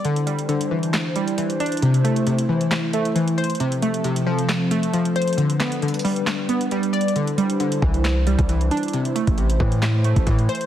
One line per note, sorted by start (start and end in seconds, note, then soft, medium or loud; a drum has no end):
0.05 0.48 D3 medium
0.05 1.81 D4 medium
0.05 3.57 E4 medium
0.05 3.57 C5 medium
0.05 closed hi-hat medium
0.16 closed hi-hat soft
0.27 1.15 G3 medium
0.27 closed hi-hat medium
0.39 closed hi-hat medium
0.49 1.60 D3 medium
0.49 closed hi-hat medium
0.61 closed hi-hat medium
0.71 1.37 E3 medium
0.83 closed hi-hat soft
0.93 snare loud
0.93 clap medium
0.93 closed hi-hat medium
1.16 1.82 G3 medium
1.16 closed hi-hat medium
1.27 closed hi-hat medium
1.38 1.82 E3 medium
1.38 closed hi-hat medium
1.50 closed hi-hat medium
1.60 1.82 D4 medium
1.60 closed hi-hat medium
1.66 closed hi-hat medium
1.72 closed hi-hat medium
1.77 closed hi-hat medium
1.82 2.26 C3 loud
1.82 3.58 A3 medium
1.82 closed hi-hat medium
1.94 closed hi-hat soft
2.04 2.92 A3 medium
2.04 closed hi-hat medium
2.16 closed hi-hat medium
2.27 3.38 C3 medium
2.27 closed hi-hat medium
2.39 closed hi-hat medium
2.49 3.14 E3 medium
2.61 closed hi-hat soft
2.71 snare loud
2.71 clap medium
2.71 closed hi-hat medium
2.93 3.60 A3 medium
2.93 closed hi-hat medium
3.05 closed hi-hat medium
3.15 3.60 E3 medium
3.15 closed hi-hat medium
3.28 closed hi-hat medium
3.38 3.60 C5 medium
3.38 closed hi-hat medium
3.44 closed hi-hat medium
3.50 closed hi-hat medium
3.55 closed hi-hat medium
3.60 4.03 C3 loud
3.60 5.36 F3 medium
3.60 5.36 C4 medium
3.60 5.36 A4 medium
3.60 closed hi-hat medium
3.72 closed hi-hat soft
3.82 4.70 A3 medium
3.82 closed hi-hat medium
3.94 closed hi-hat medium
4.04 5.16 C3 medium
4.04 closed hi-hat medium
4.16 closed hi-hat medium
4.27 4.92 F3 medium
4.39 closed hi-hat soft
4.49 snare loud
4.49 clap medium
4.49 closed hi-hat medium
4.71 5.38 A3 medium
4.71 closed hi-hat medium
4.83 closed hi-hat medium
4.93 5.38 F3 medium
4.93 closed hi-hat medium
5.05 closed hi-hat medium
5.16 5.38 C5 medium
5.16 closed hi-hat medium
5.22 closed hi-hat medium
5.27 closed hi-hat medium
5.33 closed hi-hat medium
5.38 5.81 D3 medium
5.38 7.14 G3 medium
5.38 8.90 D4 medium
5.38 7.14 B4 medium
5.38 closed hi-hat medium
5.50 closed hi-hat medium
5.60 6.48 B3 medium
5.60 snare loud
5.60 clap medium
5.60 closed hi-hat medium
5.72 closed hi-hat medium
5.82 6.94 D3 medium
5.82 closed hi-hat soft
5.88 closed hi-hat medium
5.94 closed hi-hat medium
5.99 closed hi-hat medium
6.05 6.70 G3 medium
6.05 open hi-hat medium
6.16 closed hi-hat soft
6.27 snare loud
6.27 clap medium
6.27 closed hi-hat medium
6.49 7.16 B3 medium
6.49 closed hi-hat medium
6.61 closed hi-hat medium
6.71 7.16 G3 medium
6.71 closed hi-hat medium
6.83 closed hi-hat medium
6.93 7.15 D5 medium
6.93 closed hi-hat soft
7.01 closed hi-hat medium
7.08 closed hi-hat medium
7.16 7.59 D3 medium
7.16 10.66 E4 medium
7.16 8.92 C5 medium
7.16 closed hi-hat medium
7.27 closed hi-hat medium
7.38 8.26 G3 medium
7.38 closed hi-hat medium
7.50 closed hi-hat medium
7.60 8.71 D3 medium
7.60 closed hi-hat medium
7.72 closed hi-hat medium
7.82 8.36 C2 loud
7.82 8.48 E3 medium
7.82 kick medium
7.94 closed hi-hat soft
8.05 snare loud
8.05 clap medium
8.05 closed hi-hat medium
8.27 8.93 G3 medium
8.27 closed hi-hat medium
8.39 8.70 C2 loud
8.39 kick medium
8.39 closed hi-hat medium
8.49 8.94 E3 medium
8.49 closed hi-hat medium
8.61 closed hi-hat medium
8.71 8.93 D4 medium
8.71 closed hi-hat medium
8.77 closed hi-hat medium
8.83 closed hi-hat medium
8.88 closed hi-hat medium
8.93 9.37 C3 loud
8.93 10.66 A3 medium
8.93 10.66 C5 medium
8.93 closed hi-hat medium
9.05 closed hi-hat medium
9.16 10.03 A3 medium
9.16 closed hi-hat medium
9.27 9.59 A1 loud
9.27 kick loud
9.27 closed hi-hat medium
9.38 10.49 C3 medium
9.38 closed hi-hat medium
9.50 closed hi-hat medium
9.60 10.14 A2 loud
9.60 10.25 E3 medium
9.60 kick medium
9.72 closed hi-hat soft
9.82 snare loud
9.82 clap medium
9.82 closed hi-hat medium
10.04 10.66 A3 medium
10.04 closed hi-hat medium
10.16 10.26 A1 loud
10.16 kick medium
10.16 closed hi-hat medium
10.27 10.48 A2 loud
10.27 10.66 E3 medium
10.27 kick medium
10.27 closed hi-hat medium
10.39 closed hi-hat medium
10.49 10.66 C5 medium
10.49 closed hi-hat medium
10.55 closed hi-hat medium
10.61 closed hi-hat medium